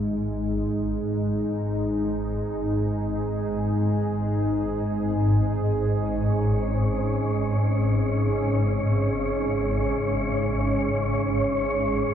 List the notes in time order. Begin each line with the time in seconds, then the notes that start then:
Already playing: G#1 G#2 G#3 D#4
0.08 G#4
5.82 C#4 C#5
9.55 C#5